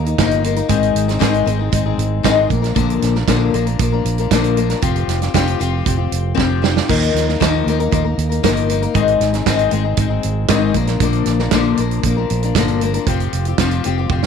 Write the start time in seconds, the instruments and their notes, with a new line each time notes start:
Already playing: fingered electric bass D#2
0.05 steel-string acoustic guitar A#3 D#4 A#4, closed hi-hat
0.18 fingered electric bass G1, steel-string acoustic guitar D#3 F3 A#3 D#4 A#4, kick, snare, closed hi-hat
0.31 closed hi-hat
0.44 steel-string acoustic guitar F3 A#3 D#4 A#4, closed hi-hat
0.56 steel-string acoustic guitar A#3 D#4 A#4, closed hi-hat
0.69 fingered electric bass G#1, steel-string acoustic guitar G#2 D#3 G#3 C4 D#4 G#4, kick, closed hi-hat
0.83 closed hi-hat
0.95 fingered electric bass G#1, closed hi-hat
1.08 steel-string acoustic guitar G#3 C4 D#4 G#4, snare, closed hi-hat
1.19 fingered electric bass G#1, steel-string acoustic guitar G#2 D#3 G#3 C4 D#4 G#4, kick, snare, closed hi-hat
1.34 closed hi-hat
1.46 fingered electric bass G#1, steel-string acoustic guitar G#3 C4 D#4 G#4, closed hi-hat
1.59 steel-string acoustic guitar G#3 C4 D#4 G#4
1.72 fingered electric bass G#1, steel-string acoustic guitar G#3 C4 D#4 G#4, kick, closed hi-hat
1.86 steel-string acoustic guitar G#3 C4 D#4 G#4
1.98 fingered electric bass G#1, closed hi-hat
2.23 fingered electric bass G#1, steel-string acoustic guitar G#2 D#3 G#3 C4 D#4 G#4, kick, snare, closed hi-hat
2.50 fingered electric bass A#1, steel-string acoustic guitar F3 A#3 D4 A#4, kick, closed hi-hat
2.62 steel-string acoustic guitar F3 A#3 D4 A#4, snare, closed hi-hat
2.75 fingered electric bass A#1, steel-string acoustic guitar A#2 D3 F3 A#3 D4 A#4, kick, closed hi-hat
2.90 closed hi-hat
3.02 fingered electric bass A#1, snare, closed hi-hat
3.15 steel-string acoustic guitar F3 A#3 D4 A#4, snare
3.28 fingered electric bass A#1, steel-string acoustic guitar A#2 D3 F3 A#3 D4 A#4, kick, snare, closed hi-hat
3.54 fingered electric bass A#1, steel-string acoustic guitar F3 A#3 D4 A#4, closed hi-hat
3.66 steel-string acoustic guitar F3 A#3 D4 A#4, closed hi-hat
3.79 fingered electric bass A#1, steel-string acoustic guitar F3 A#3 D4 A#4, kick, closed hi-hat
3.92 steel-string acoustic guitar F3 A#3 D4 A#4
4.05 fingered electric bass A#1, closed hi-hat
4.18 steel-string acoustic guitar F3 A#3 D4 A#4, closed hi-hat
4.31 fingered electric bass A#1, steel-string acoustic guitar A#2 D3 F3 A#3 D4 A#4, kick, snare, closed hi-hat
4.44 closed hi-hat
4.57 steel-string acoustic guitar F3 A#3 D4 A#4, closed hi-hat
4.70 steel-string acoustic guitar F3 A#3 D4 A#4, snare, closed hi-hat
4.82 fingered electric bass F1, steel-string acoustic guitar F3 C4 F4 G4, kick, closed hi-hat
4.96 closed hi-hat
5.08 fingered electric bass F1, snare, closed hi-hat
5.21 steel-string acoustic guitar C4 F4 G4, snare, closed hi-hat
5.34 fingered electric bass F1, steel-string acoustic guitar F3 C4 F4 G4, kick, snare, closed hi-hat
5.47 closed hi-hat
5.59 fingered electric bass F1, steel-string acoustic guitar F3 C4 F4 G4, closed hi-hat
5.85 fingered electric bass F1, steel-string acoustic guitar F3 C4 F4 G4, kick, closed hi-hat
5.97 steel-string acoustic guitar C4 F4 G4
6.12 fingered electric bass F1, closed hi-hat
6.35 fingered electric bass F1, steel-string acoustic guitar F3 C4 F4 G4, kick, snare
6.62 steel-string acoustic guitar F3 C4 F4 G4, snare
6.76 steel-string acoustic guitar C4 F4 G4, snare
6.88 fingered electric bass D#2, steel-string acoustic guitar D#3 F3 A#3 D#4 A#4, kick, crash
7.03 closed hi-hat
7.14 fingered electric bass D#2, snare, closed hi-hat
7.27 steel-string acoustic guitar A#3 D#4 A#4, snare
7.40 fingered electric bass D#2, steel-string acoustic guitar D#3 F3 A#3 D#4 A#4, kick, snare, closed hi-hat
7.66 fingered electric bass D#2, steel-string acoustic guitar F3 A#3 D#4 A#4, closed hi-hat
7.79 steel-string acoustic guitar A#3 D#4 A#4, closed hi-hat
7.91 fingered electric bass D#2, steel-string acoustic guitar F3 A#3 D#4 A#4, kick, closed hi-hat
8.04 steel-string acoustic guitar A#3 D#4 A#4
8.18 fingered electric bass D#2, closed hi-hat
8.29 steel-string acoustic guitar A#3 D#4 A#4, closed hi-hat
8.43 fingered electric bass G1, steel-string acoustic guitar D#3 F3 A#3 D#4 A#4, kick, snare, closed hi-hat
8.57 closed hi-hat
8.69 steel-string acoustic guitar F3 A#3 D#4 A#4, closed hi-hat
8.82 steel-string acoustic guitar A#3 D#4 A#4, closed hi-hat
8.94 fingered electric bass G#1, steel-string acoustic guitar G#2 D#3 G#3 C4 D#4 G#4, kick, closed hi-hat
9.08 closed hi-hat
9.20 fingered electric bass G#1, snare, closed hi-hat
9.33 steel-string acoustic guitar G#3 C4 D#4 G#4, snare, closed hi-hat
9.46 fingered electric bass G#1, steel-string acoustic guitar G#2 D#3 G#3 C4 D#4 G#4, kick, snare, closed hi-hat
9.59 closed hi-hat
9.71 fingered electric bass G#1, steel-string acoustic guitar G#3 C4 D#4 G#4, closed hi-hat
9.84 steel-string acoustic guitar G#3 C4 D#4 G#4
9.97 fingered electric bass G#1, steel-string acoustic guitar G#3 C4 D#4 G#4, kick, closed hi-hat
10.09 steel-string acoustic guitar G#3 C4 D#4 G#4
10.23 fingered electric bass G#1, closed hi-hat
10.48 fingered electric bass G#1, steel-string acoustic guitar G#2 D#3 G#3 C4 D#4 G#4, kick, snare, closed hi-hat
10.74 fingered electric bass A#1, steel-string acoustic guitar F3 A#3 D4 A#4, kick, closed hi-hat
10.87 steel-string acoustic guitar F3 A#3 D4 A#4, snare, closed hi-hat
11.00 fingered electric bass A#1, steel-string acoustic guitar A#2 D3 F3 A#3 D4 A#4, kick, closed hi-hat
11.13 closed hi-hat
11.26 fingered electric bass A#1, snare, closed hi-hat
11.39 steel-string acoustic guitar F3 A#3 D4 A#4, snare
11.51 fingered electric bass A#1, steel-string acoustic guitar A#2 D3 F3 A#3 D4 A#4, kick, snare, closed hi-hat
11.77 fingered electric bass A#1, steel-string acoustic guitar F3 A#3 D4 A#4, closed hi-hat
11.91 closed hi-hat
12.03 fingered electric bass A#1, steel-string acoustic guitar F3 A#3 D4 A#4, kick, closed hi-hat
12.17 steel-string acoustic guitar F3 A#3 D4 A#4
12.30 fingered electric bass A#1, closed hi-hat
12.42 steel-string acoustic guitar F3 A#3 D4 A#4, closed hi-hat
12.55 fingered electric bass G1, steel-string acoustic guitar A#2 D3 F3 A#3 D4 A#4, kick, snare, closed hi-hat
12.68 closed hi-hat
12.81 steel-string acoustic guitar F3 A#3 D4 A#4, closed hi-hat
12.94 steel-string acoustic guitar F3 A#3 D4 A#4, closed hi-hat
13.07 fingered electric bass F1, steel-string acoustic guitar F3 C4 F4 G4, kick, closed hi-hat
13.20 closed hi-hat
13.33 fingered electric bass F1, closed hi-hat
13.45 steel-string acoustic guitar C4 F4 G4, closed hi-hat
13.58 fingered electric bass F1, steel-string acoustic guitar F3 C4 F4 G4, kick, snare, closed hi-hat
13.71 closed hi-hat
13.84 fingered electric bass F1, steel-string acoustic guitar F3 C4 F4 G4, closed hi-hat
13.98 steel-string acoustic guitar C4 F4 G4
14.10 fingered electric bass F1, steel-string acoustic guitar F3 C4 F4 G4, kick
14.23 snare